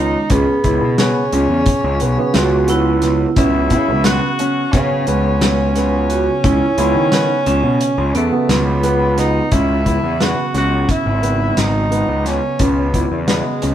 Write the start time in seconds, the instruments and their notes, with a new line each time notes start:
Already playing: picked electric bass C#2, tine electric piano D#3 G#3 C#4, vibraphone B3, tenor saxophone D#4
0.30 picked electric bass C#2, tenor saxophone B3, grand piano C#4, vibraphone G#4, kick, closed hi-hat
0.64 picked electric bass C#2, tine electric piano C#3 F#3 B3, grand piano E4, kick, closed hi-hat
0.81 picked electric bass B2
0.98 grand piano B3, tenor saxophone C#4, snare, closed hi-hat
1.32 picked electric bass C#2, grand piano C#4, closed hi-hat
1.49 picked electric bass E2
1.66 kick, closed hi-hat
1.84 picked electric bass C#2
2.00 picked electric bass B1, grand piano B3, closed hi-hat
2.17 tine electric piano C#3 F#3 B3
2.34 picked electric bass C#2, vibraphone F#4, snare, closed hi-hat
2.68 grand piano B3, vibraphone E4, closed hi-hat
3.02 tine electric piano C#3 F#3 B3, snare, closed hi-hat
3.36 picked electric bass C#2, tine electric piano C#3 F#3 B3, grand piano C#4, vibraphone C#4, tenor saxophone E4, kick, closed hi-hat
3.70 picked electric bass C#3, grand piano E4, kick, closed hi-hat
3.88 picked electric bass C#2, tine electric piano C#3 F#3 B3
4.04 grand piano B3, tenor saxophone F#4, snare, closed hi-hat
4.39 grand piano C#4, closed hi-hat
4.72 tine electric piano C#3 F#3 B3, picked electric bass C#3, tenor saxophone C#4, kick, snare, closed hi-hat
5.07 picked electric bass C#2, grand piano B3, closed hi-hat
5.41 tine electric piano C#3 F#3 B3, snare, closed hi-hat
5.75 tine electric piano C#3 F#3 B3, grand piano B3, snare, closed hi-hat
6.10 vibraphone F#4, closed hi-hat
6.44 picked electric bass C#2, grand piano C#4, vibraphone E4, kick, closed hi-hat
6.78 picked electric bass C#2, tine electric piano C#3 F#3 B3, grand piano E4, closed hi-hat
6.95 picked electric bass D#3
7.12 grand piano B3, vibraphone D#4, snare, closed hi-hat
7.46 picked electric bass C#2, grand piano C#4, vibraphone C#4, closed hi-hat
7.63 picked electric bass B2
7.81 closed hi-hat
7.98 picked electric bass C#2
8.15 picked electric bass E2, tenor saxophone A3, vibraphone B3, grand piano B3, closed hi-hat
8.31 tine electric piano C#3 F#3 B3
8.49 picked electric bass C#2, tenor saxophone B3, snare, closed hi-hat
8.83 grand piano B3, closed hi-hat
9.17 tine electric piano C#3 F#3 B3, tenor saxophone D#4, snare, closed hi-hat
9.52 picked electric bass C#2, grand piano C#4, tenor saxophone E4, kick, closed hi-hat
9.86 tine electric piano C#3 F#3 B3, grand piano E4, kick, closed hi-hat
10.03 picked electric bass E2
10.20 tine electric piano C#3 F#3 B3, grand piano B3, tenor saxophone F#4, snare, closed hi-hat
10.54 picked electric bass C#2, grand piano C#4, tenor saxophone F#4, snare, closed hi-hat
10.89 tenor saxophone E4, kick, closed hi-hat
11.06 picked electric bass G#1
11.22 tine electric piano C#3 F#3 B3, grand piano B3, closed hi-hat
11.57 picked electric bass G#1, tenor saxophone D#4, snare, closed hi-hat
11.91 grand piano B3, closed hi-hat
12.08 picked electric bass C#2
12.24 tine electric piano C#3 F#3 B3, tenor saxophone C#4, snare, closed hi-hat
12.59 picked electric bass C#2, tenor saxophone B3, grand piano C#4, kick, closed hi-hat
12.93 tine electric piano C#3 F#3 B3, grand piano E4, kick, closed hi-hat
13.12 picked electric bass E2
13.27 tine electric piano C#3 F#3 B3, tenor saxophone G#3, grand piano B3, snare, closed hi-hat
13.62 picked electric bass C#2, grand piano C#4, closed hi-hat